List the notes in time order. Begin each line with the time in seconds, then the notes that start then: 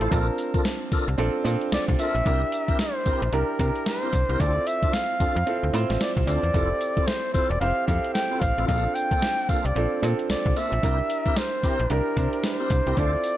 Already playing: A3 C4 E4 G4 A4
0.01 A1 E4 F4 A4 C5, closed hi-hat
0.11 A#1 C4 D4 F4 A4 A#4 A5, kick, closed hi-hat, tambourine
0.38 closed hi-hat, tambourine
0.54 C2 D4 F4 A4 A#4, kick, closed hi-hat
0.65 snare, closed hi-hat, tambourine
0.92 C2 D4 F4 A4 A#4, kick, open hi-hat, tambourine
1.08 C2, closed hi-hat
1.18 A#1 C4 D4 F4 A4, closed hi-hat
1.44 A#2 C4 D4 F4 A4, closed hi-hat, tambourine
1.61 closed hi-hat
1.72 C2 D5, snare, closed hi-hat, tambourine
1.88 C2, kick
1.99 D4 F4 A4 A#4 E5, closed hi-hat, tambourine
2.15 A#1, closed hi-hat
2.25 C2 C4 D4 E4 G4 A#4, kick, closed hi-hat, tambourine
2.52 closed hi-hat, tambourine
2.68 A#1 C4 E4 G4 A#4, kick, closed hi-hat
2.79 C5, snare, closed hi-hat, tambourine
3.06 A#1 C4 E4 G4 A#4, kick, open hi-hat, tambourine
3.22 A#1, closed hi-hat
3.32 C2 D4 E4 G4 A#4, closed hi-hat
3.59 C3 D4 E4 G4 A#4, kick, closed hi-hat, tambourine
3.75 closed hi-hat
3.86 C5, snare, closed hi-hat, tambourine
4.02 C4 E4 G4 A#4
4.13 C2, kick, closed hi-hat, tambourine
4.29 C2 C4 E4 G4 A#4, closed hi-hat
4.39 D2 C4 D4 E4 F4 A4 D5, kick, closed hi-hat, tambourine
4.67 E5, closed hi-hat, tambourine
4.83 F2 C4 D4 F4 A4, kick, closed hi-hat
4.93 F5, snare, closed hi-hat, tambourine
5.20 F2 C4 D4 F4 A4, kick, open hi-hat, tambourine
5.36 F2, closed hi-hat
5.46 C4 E4 F4 A4, closed hi-hat
5.63 D2
5.73 A2 C4 E4 F4 C5, closed hi-hat, tambourine
5.90 A1, snare, closed hi-hat
6.01 D5, snare, closed hi-hat, tambourine
6.17 C2, kick
6.27 D2 C4 D4 F4 A4 D5, open hi-hat, tambourine
6.43 E2, closed hi-hat
6.54 F1 C4 E4 F4 G4 A4, kick, closed hi-hat, tambourine
6.81 closed hi-hat, tambourine
6.97 E1 C4 E4 F4 A4, kick, closed hi-hat
7.07 C5, snare, closed hi-hat, tambourine
7.33 E1 C4 E4 F4 A4 C5, kick, open hi-hat, tambourine
7.50 E1 D5, closed hi-hat
7.61 F1 C4 E4 G4 C5 F5, closed hi-hat
7.87 F2 C4 E4 G4 A4 F5, kick, closed hi-hat, tambourine
8.04 closed hi-hat
8.14 G5, snare, closed hi-hat, tambourine
8.31 C4 E4 F4 A4
8.41 A1 F5, kick, closed hi-hat, tambourine
8.58 A1 C4 E4 F4 A4, closed hi-hat
8.68 A#1 A#3 C4 D4 F4 G#4 A4 F5, kick, closed hi-hat, tambourine
8.76 A4
8.95 G5, closed hi-hat, tambourine
9.11 C2 A#3 D4 F4 A4, kick, closed hi-hat
9.22 snare, closed hi-hat, tambourine
9.49 C2 A#3 D4 F4 A4 F5, kick, open hi-hat, tambourine
9.65 C2 D5, closed hi-hat
9.75 A#1 C4 D4 F4 A4, closed hi-hat
10.02 A#2 C4 D4 F4 A4, closed hi-hat, tambourine
10.19 closed hi-hat
10.30 C2 D5, snare, closed hi-hat, tambourine
10.46 C2, kick
10.56 A#3 D4 F4 A4 E5, closed hi-hat, tambourine
10.72 A#1, closed hi-hat
10.83 C2 C4 D4 E4 G4 A#4, kick, closed hi-hat, tambourine
11.10 closed hi-hat, tambourine
11.26 A#1 C4 E4 G4 A#4, kick, closed hi-hat
11.37 C5, snare, closed hi-hat, tambourine
11.63 A#1 C4 E4 G4 A#4, kick, open hi-hat, tambourine
11.80 A#1, closed hi-hat
11.90 C2 D4 E4 G4 A#4, closed hi-hat
12.16 C3 D4 E4 G4 C5, kick, closed hi-hat, tambourine
12.33 closed hi-hat
12.43 C5, snare, closed hi-hat, tambourine
12.60 C4 E4 G4 A#4
12.70 C2, kick, closed hi-hat, tambourine
12.87 C2 C4 E4 G4 A#4, closed hi-hat
12.97 D2 C4 D4 E4 F4 A4 C5 D5, kick, closed hi-hat, tambourine
13.24 closed hi-hat, tambourine